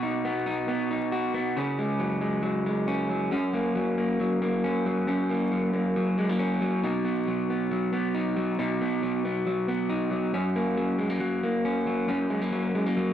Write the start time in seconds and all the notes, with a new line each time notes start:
Already playing: B2 F#4
0.03 D#4
0.25 B3
0.46 D#4
0.68 B3
0.91 D#4
1.12 F#4
1.34 B3
1.57 C#3 C#4
1.79 G#3
1.99 F#3
2.21 G#3
2.43 F#3
2.66 G#3
2.88 C#4
3.09 F#3
3.31 F#2 C#4
3.53 A#3
3.76 F#3
3.98 A#3
4.20 F#3
4.42 A#3
4.64 C#4
4.86 F#3
5.07 F#2 C#4
5.30 A#3
5.52 F#3
5.73 A#3
5.96 F#3
6.18 G#3
6.29 A#3
6.39 C#4
6.61 F#3
6.83 B2 D#4
7.05 B3
7.27 F#3
7.50 B3
7.72 F#3
7.93 B3
8.15 D#4
8.36 F#3
8.59 B2 D#4
8.81 B3
9.03 F#3
9.25 B3
9.47 F#3
9.68 B3
9.90 D#4
10.11 F#3
10.33 F#2 C#4
10.56 A#3
10.77 F#3
10.99 G#3
11.10 A#3
11.20 F#3
11.43 A#3
11.65 C#4
11.87 F#3
12.08 F#2 C#4
12.30 G#3
12.42 A#3
12.52 F#3
12.75 G#3
12.86 A#3
12.97 F#3